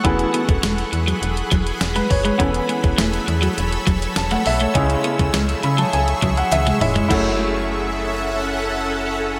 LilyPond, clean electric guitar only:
\new Staff \with { instrumentName = "Clean electric guitar" } { \clef bass \time 4/4 \key fis \minor \tempo 4 = 102 cis'16 r16 b16 r16 gis16 r8 fis16 r8 fis16 r8 gis16 r16 gis16 | cis'16 r16 b16 r16 a16 r8 fis16 r8 fis16 r8 a16 r16 a16 | cis'16 r16 b16 r16 gis16 r8 fis16 r8 fis16 r8 gis16 r16 gis16 | a8 r2. r8 | }